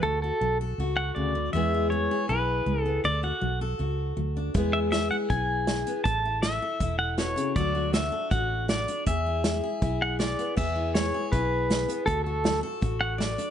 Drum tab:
CC |--------|--------|--------|--------|
HH |--------|--------|--------|x-x-x-xx|
SD |--------|--------|--------|--o---o-|
BD |--------|--------|--------|o---o---|

CC |--------|--------|--------|x-------|
HH |x-x-x-xx|x-x-x-xx|x-x-x-xx|--x-x-xx|
SD |--o---o-|--o---o-|--o---o-|--o---o-|
BD |o---o---|o---o---|o---o---|o---o---|

CC |--------|
HH |x-x-x-xx|
SD |--o---o-|
BD |o---o---|